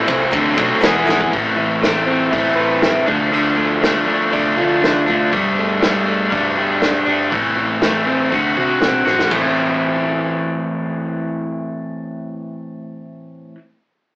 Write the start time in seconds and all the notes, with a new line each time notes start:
Already playing: A2 E3 A3 C4 E4 A4
0.07 C2 C4, kick, ride, shaker
0.19 shaker
0.31 D2 D3 F#3 C4 D4 A4, kick, ride, shaker
0.43 shaker
0.56 B1 A3 D4 A4, kick, ride, shaker
0.60 C4
0.81 E1 E3 B3 E4 G#4, snare, ride, shaker
1.06 G#1 E3 G#4, snare, shaker
1.11 E4
1.19 kick, shaker
1.31 A1 A2 E3 A3, kick, open hi-hat
1.36 C4
1.56 E3
1.81 E3 A3 C4, snare, open hi-hat
2.06 C4
2.11 A3
2.30 A1 E3 A3 E4, kick, open hi-hat
2.35 C4
2.56 C4 B4
2.61 A3
2.81 E4, snare, open hi-hat
3.06 D2 D3 A3 D4, kick
3.10 F3
3.31 D3 F3 A3 D4, open hi-hat
3.57 A3
3.82 D3 F3 A3 D4, snare, open hi-hat
4.06 A3 D4
4.30 D2 F3 A3 D4, kick, open hi-hat
4.56 D3 A3 D4 F4, kick
4.82 D4, snare, open hi-hat
5.06 D2 A3 D4 F4, kick
5.31 G1 G3 A3 D4, kick, open hi-hat
5.59 A3
5.81 G3 A3 D4, snare, open hi-hat
6.06 A3 D4
6.10 A3
6.30 G1 G3 A3 D4, kick, open hi-hat
6.56 A3 D4 G4
6.82 D4, snare, open hi-hat
7.05 G1 A3 D4 G4
7.30 A1 A2 E3 A3 C4, kick, open hi-hat
7.57 E3
7.80 E3 A3 C4, snare, open hi-hat
8.05 A3 C4
8.30 D2 D3 A3 C4 F#4, kick, open hi-hat
8.55 C2 F#4, kick
8.59 C4
8.80 B1 C4, snare, open hi-hat
9.05 A1 C4 F#4, snare
9.19 snare
9.30 A1 A2 E3 A3 C4 E4 A4, kick, crash